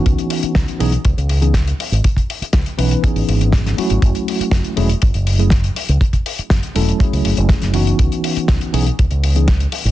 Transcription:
<<
  \new Staff \with { instrumentName = "Tine electric piano" } { \time 4/4 \key fis \dorian \tempo 4 = 121 <e b cis' dis' fis'>4. <e b cis' dis' gis'>16 r4 <e b cis' dis' gis'>16 r4 | r4. <e b cis' dis' b'>8 <e b cis' dis' gis'>4. <fis a cis' e' fis'>8~ | <fis a cis' e' fis'>4. <fis a cis' e' gis'>16 r4 <fis a cis' e' gis'>16 r4 | r4. <fis a cis' e' a'>8 <fis a cis' e' gis'>4. <e b cis' dis' fis'>8~ |
<e b cis' dis' fis'>4. <e b cis' dis' gis'>16 r4 <e b cis' dis' gis'>16 r4 | }
  \new Staff \with { instrumentName = "Fingered electric bass" } { \clef bass \time 4/4 \key fis \dorian cis,16 r8. cis,16 r16 b,,16 r16 cis,16 cis,4 r8 gis,,16 | r4 cis,16 r16 b,,16 r8 gis,,16 gis,,4 r16 gis,,16 | fis,,16 r8. fis,,16 r16 e,,16 r16 fis,,16 fis,,4 r8 cis,16 | r4 fis,,16 r16 e,,16 r8 cis,16 fis,,16 fis,,16 r16 fis,,8 r16 |
cis,16 r8. cis,16 r16 b,,16 r16 cis,16 cis,4 r8 gis,,16 | }
  \new DrumStaff \with { instrumentName = "Drums" } \drummode { \time 4/4 <hh bd>16 hh16 hho16 hh16 <hh bd sn>16 hh16 hho16 hh16 <hh bd>16 hh16 hho16 hh16 <hh bd sn>16 hh16 hho16 hh16 | <hh bd>16 <hh bd>16 hho16 hh16 <hh bd sn>16 hh16 hho16 hh16 <hh bd>16 hho16 hho16 hh16 <hh bd sn>16 <hh sn>16 hho16 hh16 | <hh bd>16 hh16 hho16 hh16 <hh bd sn>16 hh16 hho16 hh16 <hh bd>16 hh16 hho16 hh16 <hh bd sn>16 hh16 hho16 hh16 | <hh bd>16 <hh bd>16 hho16 hh16 <hh bd sn>16 hh16 hho16 hh16 <hh bd>16 hho16 hho16 hh16 <hh bd sn>16 <hh sn>16 hho16 hh16 |
<hh bd>16 hh16 hho16 hh16 <hh bd sn>16 hh16 hho16 hh16 <hh bd>16 hh16 hho16 hh16 <hh bd sn>16 hh16 hho16 hh16 | }
>>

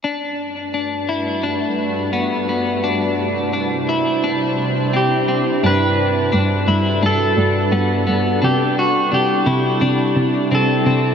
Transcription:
<<
  \new Staff \with { instrumentName = "Clean electric guitar" } { \time 4/4 \key g \lydian \tempo 4 = 86 r1 | r2. g'4 | b'2 a'2 | g'8 fis'8 g'2 a'4 | }
  \new Staff \with { instrumentName = "Ambient pad" } { \time 4/4 \key g \lydian << { <g, a fis' b'>1 | <c d' e' c''>1 | <g fis' a' b'>1 | <c g e'>1 | } \\ { g1~ | g1 | d'1 | c'1 | } >> }
  \new Staff \with { instrumentName = "Clean electric guitar" } { \time 4/4 \key g \lydian d'4 d'8 e'8 d'4 b8 b8 | d'4 d'8 e'8 d'4 c'8 c'8 | d'4 d'8 e'8 d'4 b8 b8 | d'4 d'8 e'8 d'4 c'8 c'8 | }
  \new Staff \with { instrumentName = "Cello" } { \clef bass \time 4/4 \key g \lydian r1 | r1 | g,4 g,8 g,8 g,8 g,8 g,8 g,8 | c4 c8 c8 c8 c8 c8 c8 | }
>>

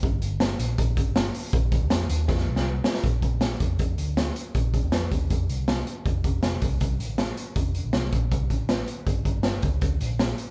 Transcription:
<<
  \new Staff \with { instrumentName = "Picked electric bass" } { \clef bass \time 4/4 \key bes \major \tempo 4 = 160 g,,8 g,,4 bes,,8 bes,,8 g,,4 r8 | bes,,8. d,16 f,8 ees,8 f,8 c,4 r8 | bes,,8 bes,,4 f,8 f,8 d,4 r8 | bes,,8. ees,16 f,8 ees,8 f,8 c,4 r8 |
f,,8 f,,4 c,8 c,8 a,,4 r8 | f,,8. bes,,16 c,8 bes,,8 c,8 a,,4 r8 | g,,8 g,,4 d,8 d,8 bes,,4 r8 | }
  \new DrumStaff \with { instrumentName = "Drums" } \drummode { \time 4/4 <hh bd>8 hh8 <hh sn>8 hh8 <hh bd>8 <hh bd>8 <hh sn>8 hho8 | <hh bd>8 <hh bd>8 <hh sn>8 hh8 <bd sn>16 sn8 sn16 r8 sn16 sn16 | <hh bd>8 <hh bd>8 <hh sn>8 <hh bd>8 <hh bd>8 hh8 <hh sn>8 hh8 | <hh bd>8 <hh bd>8 <hh sn>8 <hh bd>8 <hh bd>8 hh8 <hh sn>8 hh8 |
<hh bd>8 <hh bd>8 <hh sn>8 <hh bd>8 <hh bd>8 hh8 <hh sn>8 hh8 | <hh bd>8 hh8 <hh sn>8 <hh bd>8 <hh bd>8 <hh bd>8 <hh sn>8 hh8 | <hh bd>8 <hh bd>8 <hh sn>8 <hh bd>8 <hh bd>8 hh8 <hh sn>8 hh8 | }
>>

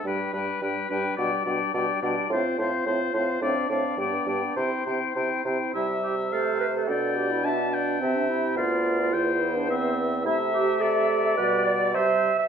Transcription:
<<
  \new Staff \with { instrumentName = "Flute" } { \time 2/4 \key g \major \tempo 4 = 106 g''8 g''8 g''8 g''8 | \key c \major g''8 g''8 g''8 g''8 | f''8 f''8 f''8 f''8 | f''8 f''8 g''8 g''8 |
g''8 g''8 g''8 g''8 | e''4 c''4 | d''4 e''8 d''8 | e''4 d''4 |
c''2 | \key g \major e''2 | d''4 c''8 r8 | }
  \new Staff \with { instrumentName = "Oboe" } { \time 2/4 \key g \major b'8 b'8 b'8 b'8 | \key c \major d''8 d''8 d''8 d''8 | c''8 c''8 c''8 c''8 | d''8 d''8 d''8 d''8 |
c''8 c''8 c''8 c''8 | e''4 f''4 | g''4 a''8 g''8~ | g''4 f''4 |
g''4 e''4 | \key g \major e''4 d''4~ | d''4 c''8 r8 | }
  \new Staff \with { instrumentName = "Clarinet" } { \time 2/4 \key g \major d'8 d'8 d'8 d'8 | \key c \major d'8 d'8 d'8 d'8 | f'8 f'8 f'8 f'8 | d'8 d'8 d'8 d'8 |
e'8 e'8 e'8 e'8 | e'8 g'8 a'8 b'16 a'16~ | a'8 g'16 e'16 d'4 | c'16 d'16 e'8 f'8. f'16~ |
f'8 e'16 d'16 c'4 | \key g \major e'8 g'8 a'8. a'16 | b'8 d''8 e''8. e''16 | }
  \new Staff \with { instrumentName = "French horn" } { \time 2/4 \key g \major g8 g8 g8 g8 | \key c \major g8 g8 g8 g8 | c'8 c'8 c'8 c'8 | c'8 c'8 b8 b8 |
c'8 c'8 c'8 c'8 | g4 a4 | d'2 | c'4 b4 |
b2 | \key g \major a2 | g4 g8 r8 | }
  \new Staff \with { instrumentName = "Bassoon" } { \clef bass \time 2/4 \key g \major g,8 g,8 g,8 g,8 | \key c \major b,8 b,8 b,8 b,8 | a,8 a,8 a,8 a,8 | a,8 a,8 g,8 g,8 |
c8 c8 c8 c8 | c2 | b,2 | c4 d,4 |
e,2 | \key g \major c2 | b,4 c8 r8 | }
>>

